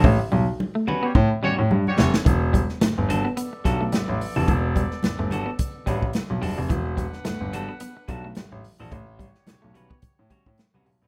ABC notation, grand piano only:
X:1
M:4/4
L:1/16
Q:"Swing 16ths" 1/4=108
K:Edor
V:1 name="Grand piano" clef=bass
A,,, z B,,, z4 z A,, z A,, A,, G,, z =F,,, z | E,,,3 z G,,, G,,,2 z3 B,,,2 A,,, A,,, z =F,,, | E,,,3 z G,,, G,,,2 z3 A,,,2 z B,,, F,,, =F,,, | E,,,3 z G,,, G,,,2 z3 B,,,2 A,,, A,,, z ^A,,, |
A,,,3 z B,,, B,,,2 z2 A,, z A,, z =C,, B,,, ^A,,, |]